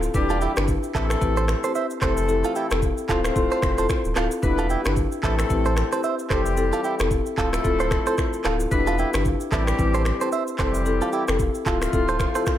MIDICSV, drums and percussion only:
0, 0, Header, 1, 2, 480
1, 0, Start_track
1, 0, Key_signature, 0, "minor"
1, 0, Tempo, 535714
1, 128, Time_signature, 4, 2, 24, 8
1, 11273, End_track
2, 0, Start_track
2, 0, Title_t, "Drums"
2, 25, Note_on_c, 9, 82, 91
2, 115, Note_off_c, 9, 82, 0
2, 127, Note_on_c, 9, 82, 81
2, 129, Note_on_c, 9, 36, 105
2, 217, Note_off_c, 9, 82, 0
2, 218, Note_off_c, 9, 36, 0
2, 267, Note_on_c, 9, 82, 59
2, 356, Note_off_c, 9, 82, 0
2, 369, Note_on_c, 9, 82, 59
2, 458, Note_off_c, 9, 82, 0
2, 506, Note_on_c, 9, 82, 83
2, 511, Note_on_c, 9, 37, 123
2, 520, Note_on_c, 9, 26, 98
2, 595, Note_off_c, 9, 82, 0
2, 600, Note_off_c, 9, 37, 0
2, 608, Note_on_c, 9, 82, 77
2, 609, Note_off_c, 9, 26, 0
2, 609, Note_on_c, 9, 36, 89
2, 698, Note_off_c, 9, 36, 0
2, 698, Note_off_c, 9, 82, 0
2, 746, Note_on_c, 9, 82, 60
2, 836, Note_off_c, 9, 82, 0
2, 848, Note_on_c, 9, 36, 93
2, 851, Note_on_c, 9, 82, 65
2, 852, Note_on_c, 9, 39, 107
2, 938, Note_off_c, 9, 36, 0
2, 941, Note_off_c, 9, 82, 0
2, 942, Note_off_c, 9, 39, 0
2, 986, Note_on_c, 9, 37, 101
2, 989, Note_on_c, 9, 82, 89
2, 995, Note_on_c, 9, 26, 82
2, 1076, Note_off_c, 9, 37, 0
2, 1079, Note_off_c, 9, 82, 0
2, 1085, Note_off_c, 9, 26, 0
2, 1089, Note_on_c, 9, 82, 81
2, 1090, Note_on_c, 9, 36, 110
2, 1179, Note_off_c, 9, 36, 0
2, 1179, Note_off_c, 9, 82, 0
2, 1227, Note_on_c, 9, 82, 58
2, 1316, Note_off_c, 9, 82, 0
2, 1327, Note_on_c, 9, 37, 107
2, 1328, Note_on_c, 9, 82, 64
2, 1336, Note_on_c, 9, 26, 84
2, 1417, Note_off_c, 9, 37, 0
2, 1417, Note_off_c, 9, 82, 0
2, 1426, Note_off_c, 9, 26, 0
2, 1467, Note_on_c, 9, 82, 100
2, 1557, Note_off_c, 9, 82, 0
2, 1568, Note_on_c, 9, 82, 75
2, 1657, Note_off_c, 9, 82, 0
2, 1707, Note_on_c, 9, 82, 55
2, 1796, Note_off_c, 9, 82, 0
2, 1807, Note_on_c, 9, 36, 103
2, 1807, Note_on_c, 9, 37, 94
2, 1807, Note_on_c, 9, 39, 91
2, 1807, Note_on_c, 9, 82, 61
2, 1817, Note_on_c, 9, 26, 73
2, 1896, Note_off_c, 9, 36, 0
2, 1896, Note_off_c, 9, 82, 0
2, 1897, Note_off_c, 9, 37, 0
2, 1897, Note_off_c, 9, 39, 0
2, 1906, Note_off_c, 9, 26, 0
2, 1946, Note_on_c, 9, 82, 95
2, 2036, Note_off_c, 9, 82, 0
2, 2048, Note_on_c, 9, 82, 75
2, 2138, Note_off_c, 9, 82, 0
2, 2188, Note_on_c, 9, 82, 63
2, 2277, Note_off_c, 9, 82, 0
2, 2289, Note_on_c, 9, 82, 57
2, 2379, Note_off_c, 9, 82, 0
2, 2427, Note_on_c, 9, 82, 81
2, 2432, Note_on_c, 9, 37, 123
2, 2441, Note_on_c, 9, 26, 97
2, 2516, Note_off_c, 9, 82, 0
2, 2521, Note_off_c, 9, 37, 0
2, 2529, Note_on_c, 9, 36, 85
2, 2529, Note_on_c, 9, 82, 75
2, 2530, Note_off_c, 9, 26, 0
2, 2618, Note_off_c, 9, 36, 0
2, 2619, Note_off_c, 9, 82, 0
2, 2667, Note_on_c, 9, 82, 57
2, 2756, Note_off_c, 9, 82, 0
2, 2768, Note_on_c, 9, 36, 92
2, 2771, Note_on_c, 9, 82, 64
2, 2772, Note_on_c, 9, 39, 104
2, 2857, Note_off_c, 9, 36, 0
2, 2861, Note_off_c, 9, 82, 0
2, 2862, Note_off_c, 9, 39, 0
2, 2907, Note_on_c, 9, 37, 100
2, 2910, Note_on_c, 9, 82, 87
2, 2916, Note_on_c, 9, 26, 80
2, 2996, Note_off_c, 9, 37, 0
2, 2999, Note_off_c, 9, 82, 0
2, 3005, Note_off_c, 9, 26, 0
2, 3009, Note_on_c, 9, 36, 107
2, 3009, Note_on_c, 9, 82, 83
2, 3099, Note_off_c, 9, 36, 0
2, 3099, Note_off_c, 9, 82, 0
2, 3147, Note_on_c, 9, 82, 53
2, 3236, Note_off_c, 9, 82, 0
2, 3247, Note_on_c, 9, 37, 100
2, 3248, Note_on_c, 9, 36, 104
2, 3248, Note_on_c, 9, 82, 63
2, 3256, Note_on_c, 9, 26, 84
2, 3336, Note_off_c, 9, 37, 0
2, 3337, Note_off_c, 9, 82, 0
2, 3338, Note_off_c, 9, 36, 0
2, 3345, Note_off_c, 9, 26, 0
2, 3388, Note_on_c, 9, 82, 101
2, 3477, Note_off_c, 9, 82, 0
2, 3487, Note_on_c, 9, 82, 83
2, 3490, Note_on_c, 9, 36, 99
2, 3490, Note_on_c, 9, 37, 91
2, 3499, Note_on_c, 9, 26, 74
2, 3577, Note_off_c, 9, 82, 0
2, 3579, Note_off_c, 9, 36, 0
2, 3579, Note_off_c, 9, 37, 0
2, 3588, Note_off_c, 9, 26, 0
2, 3626, Note_on_c, 9, 82, 59
2, 3715, Note_off_c, 9, 82, 0
2, 3726, Note_on_c, 9, 82, 60
2, 3727, Note_on_c, 9, 37, 94
2, 3727, Note_on_c, 9, 39, 92
2, 3736, Note_on_c, 9, 26, 70
2, 3816, Note_off_c, 9, 82, 0
2, 3817, Note_off_c, 9, 37, 0
2, 3817, Note_off_c, 9, 39, 0
2, 3826, Note_off_c, 9, 26, 0
2, 3865, Note_on_c, 9, 82, 91
2, 3955, Note_off_c, 9, 82, 0
2, 3967, Note_on_c, 9, 82, 78
2, 3968, Note_on_c, 9, 36, 104
2, 4056, Note_off_c, 9, 82, 0
2, 4058, Note_off_c, 9, 36, 0
2, 4107, Note_on_c, 9, 82, 59
2, 4197, Note_off_c, 9, 82, 0
2, 4209, Note_on_c, 9, 82, 58
2, 4299, Note_off_c, 9, 82, 0
2, 4345, Note_on_c, 9, 82, 81
2, 4350, Note_on_c, 9, 37, 124
2, 4359, Note_on_c, 9, 26, 101
2, 4435, Note_off_c, 9, 82, 0
2, 4440, Note_off_c, 9, 37, 0
2, 4448, Note_on_c, 9, 36, 91
2, 4448, Note_on_c, 9, 82, 73
2, 4449, Note_off_c, 9, 26, 0
2, 4538, Note_off_c, 9, 36, 0
2, 4538, Note_off_c, 9, 82, 0
2, 4586, Note_on_c, 9, 82, 60
2, 4676, Note_off_c, 9, 82, 0
2, 4687, Note_on_c, 9, 36, 95
2, 4689, Note_on_c, 9, 82, 62
2, 4690, Note_on_c, 9, 39, 108
2, 4777, Note_off_c, 9, 36, 0
2, 4779, Note_off_c, 9, 82, 0
2, 4780, Note_off_c, 9, 39, 0
2, 4826, Note_on_c, 9, 37, 101
2, 4829, Note_on_c, 9, 82, 92
2, 4835, Note_on_c, 9, 26, 80
2, 4915, Note_off_c, 9, 37, 0
2, 4918, Note_off_c, 9, 82, 0
2, 4924, Note_off_c, 9, 26, 0
2, 4928, Note_on_c, 9, 82, 80
2, 4929, Note_on_c, 9, 36, 109
2, 5018, Note_off_c, 9, 36, 0
2, 5018, Note_off_c, 9, 82, 0
2, 5066, Note_on_c, 9, 82, 53
2, 5156, Note_off_c, 9, 82, 0
2, 5166, Note_on_c, 9, 37, 106
2, 5167, Note_on_c, 9, 82, 65
2, 5175, Note_on_c, 9, 26, 81
2, 5255, Note_off_c, 9, 37, 0
2, 5256, Note_off_c, 9, 82, 0
2, 5265, Note_off_c, 9, 26, 0
2, 5307, Note_on_c, 9, 82, 96
2, 5397, Note_off_c, 9, 82, 0
2, 5407, Note_on_c, 9, 82, 79
2, 5497, Note_off_c, 9, 82, 0
2, 5547, Note_on_c, 9, 82, 57
2, 5636, Note_off_c, 9, 82, 0
2, 5647, Note_on_c, 9, 36, 99
2, 5647, Note_on_c, 9, 37, 94
2, 5647, Note_on_c, 9, 39, 90
2, 5647, Note_on_c, 9, 82, 58
2, 5656, Note_on_c, 9, 26, 76
2, 5736, Note_off_c, 9, 36, 0
2, 5736, Note_off_c, 9, 82, 0
2, 5737, Note_off_c, 9, 37, 0
2, 5737, Note_off_c, 9, 39, 0
2, 5746, Note_off_c, 9, 26, 0
2, 5787, Note_on_c, 9, 82, 93
2, 5876, Note_off_c, 9, 82, 0
2, 5888, Note_on_c, 9, 82, 79
2, 5977, Note_off_c, 9, 82, 0
2, 6028, Note_on_c, 9, 82, 59
2, 6117, Note_off_c, 9, 82, 0
2, 6129, Note_on_c, 9, 82, 55
2, 6218, Note_off_c, 9, 82, 0
2, 6267, Note_on_c, 9, 82, 84
2, 6272, Note_on_c, 9, 37, 125
2, 6281, Note_on_c, 9, 26, 99
2, 6356, Note_off_c, 9, 82, 0
2, 6361, Note_off_c, 9, 37, 0
2, 6369, Note_on_c, 9, 36, 87
2, 6369, Note_on_c, 9, 82, 77
2, 6370, Note_off_c, 9, 26, 0
2, 6459, Note_off_c, 9, 36, 0
2, 6459, Note_off_c, 9, 82, 0
2, 6506, Note_on_c, 9, 82, 56
2, 6596, Note_off_c, 9, 82, 0
2, 6608, Note_on_c, 9, 36, 98
2, 6611, Note_on_c, 9, 82, 62
2, 6612, Note_on_c, 9, 39, 104
2, 6697, Note_off_c, 9, 36, 0
2, 6700, Note_off_c, 9, 82, 0
2, 6701, Note_off_c, 9, 39, 0
2, 6747, Note_on_c, 9, 37, 98
2, 6750, Note_on_c, 9, 82, 91
2, 6756, Note_on_c, 9, 26, 81
2, 6836, Note_off_c, 9, 37, 0
2, 6840, Note_off_c, 9, 82, 0
2, 6846, Note_off_c, 9, 26, 0
2, 6849, Note_on_c, 9, 82, 84
2, 6850, Note_on_c, 9, 36, 101
2, 6939, Note_off_c, 9, 36, 0
2, 6939, Note_off_c, 9, 82, 0
2, 6987, Note_on_c, 9, 82, 53
2, 7077, Note_off_c, 9, 82, 0
2, 7087, Note_on_c, 9, 37, 103
2, 7087, Note_on_c, 9, 82, 65
2, 7088, Note_on_c, 9, 36, 109
2, 7096, Note_on_c, 9, 26, 83
2, 7176, Note_off_c, 9, 37, 0
2, 7177, Note_off_c, 9, 82, 0
2, 7178, Note_off_c, 9, 36, 0
2, 7185, Note_off_c, 9, 26, 0
2, 7227, Note_on_c, 9, 82, 103
2, 7317, Note_off_c, 9, 82, 0
2, 7327, Note_on_c, 9, 82, 79
2, 7330, Note_on_c, 9, 36, 97
2, 7330, Note_on_c, 9, 37, 94
2, 7339, Note_on_c, 9, 26, 76
2, 7417, Note_off_c, 9, 82, 0
2, 7419, Note_off_c, 9, 36, 0
2, 7419, Note_off_c, 9, 37, 0
2, 7428, Note_off_c, 9, 26, 0
2, 7466, Note_on_c, 9, 82, 57
2, 7556, Note_off_c, 9, 82, 0
2, 7566, Note_on_c, 9, 82, 62
2, 7567, Note_on_c, 9, 37, 93
2, 7567, Note_on_c, 9, 39, 93
2, 7576, Note_on_c, 9, 26, 76
2, 7656, Note_off_c, 9, 37, 0
2, 7656, Note_off_c, 9, 39, 0
2, 7656, Note_off_c, 9, 82, 0
2, 7665, Note_off_c, 9, 26, 0
2, 7706, Note_on_c, 9, 82, 91
2, 7795, Note_off_c, 9, 82, 0
2, 7808, Note_on_c, 9, 82, 81
2, 7809, Note_on_c, 9, 36, 102
2, 7897, Note_off_c, 9, 82, 0
2, 7898, Note_off_c, 9, 36, 0
2, 7948, Note_on_c, 9, 82, 61
2, 8037, Note_off_c, 9, 82, 0
2, 8049, Note_on_c, 9, 82, 59
2, 8139, Note_off_c, 9, 82, 0
2, 8186, Note_on_c, 9, 82, 86
2, 8190, Note_on_c, 9, 37, 127
2, 8200, Note_on_c, 9, 26, 101
2, 8275, Note_off_c, 9, 82, 0
2, 8280, Note_off_c, 9, 37, 0
2, 8289, Note_off_c, 9, 26, 0
2, 8289, Note_on_c, 9, 36, 88
2, 8289, Note_on_c, 9, 82, 77
2, 8378, Note_off_c, 9, 82, 0
2, 8379, Note_off_c, 9, 36, 0
2, 8427, Note_on_c, 9, 82, 58
2, 8516, Note_off_c, 9, 82, 0
2, 8528, Note_on_c, 9, 36, 97
2, 8531, Note_on_c, 9, 82, 64
2, 8532, Note_on_c, 9, 39, 107
2, 8618, Note_off_c, 9, 36, 0
2, 8621, Note_off_c, 9, 82, 0
2, 8622, Note_off_c, 9, 39, 0
2, 8667, Note_on_c, 9, 37, 97
2, 8670, Note_on_c, 9, 82, 91
2, 8676, Note_on_c, 9, 26, 82
2, 8756, Note_off_c, 9, 37, 0
2, 8760, Note_off_c, 9, 82, 0
2, 8766, Note_off_c, 9, 26, 0
2, 8770, Note_on_c, 9, 36, 107
2, 8770, Note_on_c, 9, 82, 80
2, 8859, Note_off_c, 9, 36, 0
2, 8859, Note_off_c, 9, 82, 0
2, 8908, Note_on_c, 9, 82, 57
2, 8997, Note_off_c, 9, 82, 0
2, 9007, Note_on_c, 9, 37, 103
2, 9008, Note_on_c, 9, 82, 64
2, 9016, Note_on_c, 9, 26, 85
2, 9096, Note_off_c, 9, 37, 0
2, 9097, Note_off_c, 9, 82, 0
2, 9106, Note_off_c, 9, 26, 0
2, 9149, Note_on_c, 9, 82, 102
2, 9238, Note_off_c, 9, 82, 0
2, 9248, Note_on_c, 9, 82, 80
2, 9338, Note_off_c, 9, 82, 0
2, 9386, Note_on_c, 9, 82, 59
2, 9476, Note_off_c, 9, 82, 0
2, 9486, Note_on_c, 9, 82, 59
2, 9487, Note_on_c, 9, 36, 96
2, 9487, Note_on_c, 9, 37, 90
2, 9487, Note_on_c, 9, 39, 92
2, 9496, Note_on_c, 9, 26, 74
2, 9576, Note_off_c, 9, 37, 0
2, 9576, Note_off_c, 9, 39, 0
2, 9576, Note_off_c, 9, 82, 0
2, 9577, Note_off_c, 9, 36, 0
2, 9586, Note_off_c, 9, 26, 0
2, 9626, Note_on_c, 9, 82, 89
2, 9716, Note_off_c, 9, 82, 0
2, 9728, Note_on_c, 9, 82, 78
2, 9817, Note_off_c, 9, 82, 0
2, 9868, Note_on_c, 9, 82, 61
2, 9957, Note_off_c, 9, 82, 0
2, 9969, Note_on_c, 9, 82, 57
2, 10059, Note_off_c, 9, 82, 0
2, 10105, Note_on_c, 9, 82, 83
2, 10110, Note_on_c, 9, 37, 127
2, 10119, Note_on_c, 9, 26, 98
2, 10195, Note_off_c, 9, 82, 0
2, 10200, Note_off_c, 9, 37, 0
2, 10208, Note_on_c, 9, 82, 75
2, 10209, Note_off_c, 9, 26, 0
2, 10209, Note_on_c, 9, 36, 90
2, 10298, Note_off_c, 9, 36, 0
2, 10298, Note_off_c, 9, 82, 0
2, 10346, Note_on_c, 9, 82, 57
2, 10435, Note_off_c, 9, 82, 0
2, 10448, Note_on_c, 9, 36, 97
2, 10450, Note_on_c, 9, 82, 63
2, 10451, Note_on_c, 9, 39, 107
2, 10537, Note_off_c, 9, 36, 0
2, 10540, Note_off_c, 9, 82, 0
2, 10541, Note_off_c, 9, 39, 0
2, 10587, Note_on_c, 9, 37, 96
2, 10590, Note_on_c, 9, 82, 89
2, 10596, Note_on_c, 9, 26, 78
2, 10676, Note_off_c, 9, 37, 0
2, 10680, Note_off_c, 9, 82, 0
2, 10686, Note_off_c, 9, 26, 0
2, 10690, Note_on_c, 9, 36, 108
2, 10690, Note_on_c, 9, 82, 86
2, 10779, Note_off_c, 9, 36, 0
2, 10779, Note_off_c, 9, 82, 0
2, 10828, Note_on_c, 9, 82, 53
2, 10917, Note_off_c, 9, 82, 0
2, 10927, Note_on_c, 9, 37, 105
2, 10928, Note_on_c, 9, 82, 65
2, 10929, Note_on_c, 9, 36, 105
2, 10936, Note_on_c, 9, 26, 84
2, 11016, Note_off_c, 9, 37, 0
2, 11017, Note_off_c, 9, 82, 0
2, 11018, Note_off_c, 9, 36, 0
2, 11026, Note_off_c, 9, 26, 0
2, 11067, Note_on_c, 9, 82, 104
2, 11157, Note_off_c, 9, 82, 0
2, 11167, Note_on_c, 9, 82, 80
2, 11169, Note_on_c, 9, 37, 97
2, 11170, Note_on_c, 9, 36, 102
2, 11179, Note_on_c, 9, 26, 76
2, 11257, Note_off_c, 9, 82, 0
2, 11259, Note_off_c, 9, 37, 0
2, 11260, Note_off_c, 9, 36, 0
2, 11268, Note_off_c, 9, 26, 0
2, 11273, End_track
0, 0, End_of_file